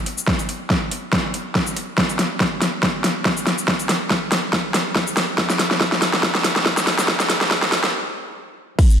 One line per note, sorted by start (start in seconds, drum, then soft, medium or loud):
0.06 closed hi-hat medium
0.18 shaker medium
0.28 kick loud
0.28 snare medium
0.39 closed hi-hat soft
0.39 shaker medium
0.49 closed hi-hat medium
0.70 kick loud
0.70 snare medium
0.91 closed hi-hat medium
1.13 kick loud
1.13 snare medium
1.34 closed hi-hat medium
1.55 kick loud
1.55 snare medium
1.67 shaker medium
1.77 closed hi-hat medium
1.98 kick loud
1.98 snare medium
2.09 closed hi-hat soft
2.09 shaker medium
2.19 snare medium
2.19 closed hi-hat medium
2.40 kick loud
2.40 snare medium
2.62 snare medium
2.62 closed hi-hat medium
2.83 kick loud
2.83 snare medium
3.04 snare medium
3.04 closed hi-hat medium
3.25 kick loud
3.25 snare medium
3.37 shaker medium
3.47 snare medium
3.47 open hi-hat medium
3.58 shaker medium
3.68 kick loud
3.68 snare medium
3.80 closed hi-hat soft
3.80 shaker medium
3.89 snare medium
3.89 closed hi-hat medium
4.11 kick loud
4.11 snare medium
4.32 snare medium
4.32 closed hi-hat medium
4.53 kick loud
4.53 snare medium
4.74 snare medium
4.74 closed hi-hat medium
4.96 kick loud
4.96 snare medium
5.07 shaker medium
5.17 snare medium
5.17 open hi-hat medium
5.38 kick loud
5.38 snare medium
5.50 snare medium
5.50 closed hi-hat soft
5.50 shaker medium
5.59 snare medium
5.59 closed hi-hat medium
5.71 snare medium
5.81 kick loud
5.81 snare medium
5.92 snare medium
6.02 snare loud
6.02 closed hi-hat medium
6.14 snare medium
6.23 kick loud
6.23 snare loud
6.35 snare medium
6.45 snare loud
6.45 closed hi-hat medium
6.56 snare medium
6.66 kick loud
6.66 snare loud
6.77 snare medium
6.77 shaker medium
6.87 snare loud
6.87 open hi-hat medium
6.99 snare loud
6.99 shaker medium
7.08 kick loud
7.08 snare loud
7.20 snare medium
7.20 closed hi-hat soft
7.20 shaker medium
7.30 snare loud
7.30 closed hi-hat medium
7.41 snare medium
7.51 kick loud
7.51 snare loud
7.63 snare medium
7.72 snare loud
7.72 open hi-hat medium
7.84 snare medium
8.79 kick loud
8.79 crash loud
8.90 shaker medium